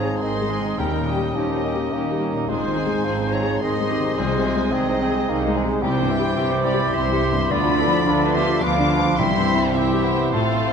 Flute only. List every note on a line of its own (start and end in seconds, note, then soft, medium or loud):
0.00 0.24 C#5 medium
0.22 0.81 D#5 medium
0.79 1.37 A#4 soft
1.36 2.21 G4 soft
2.49 3.35 C5 medium
3.33 3.62 C#5 medium
3.61 4.16 D#5 medium
4.17 4.74 C5 medium
4.73 5.56 G#4 medium
5.83 6.66 C5 medium
6.64 6.95 D5 medium
6.94 7.53 E5 medium
7.51 8.36 D5 medium
8.35 8.63 E5 medium
8.62 9.20 F5 medium
9.18 9.75 E5 medium
9.76 10.34 G4 medium
10.32 10.73 A4 medium